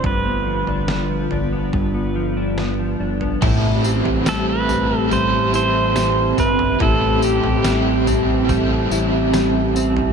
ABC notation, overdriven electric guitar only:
X:1
M:4/4
L:1/8
Q:1/4=71
K:Am
V:1 name="Overdriven electric guitar"
z8 | [A,,E,G,CEA]2 [G,CEA]2 [G,CEA]4 | [A,,E,G,CEA]2 [G,CEA]2 [G,CEA]4 |]